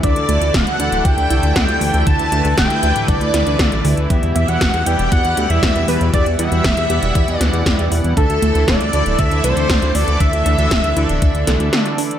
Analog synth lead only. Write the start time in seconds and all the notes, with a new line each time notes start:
0.03 D5
0.54 F#5
1.05 G5
1.56 G5
2.07 A5
2.58 G5
3.09 D5
4.36 E5
4.48 F#5
4.87 G5
5.12 F#5
5.50 E5
5.88 B4
6.14 D5
6.39 E5
7.38 D5
8.17 A4
8.68 D5
9.19 E5
9.44 C5
9.95 D5
10.20 E5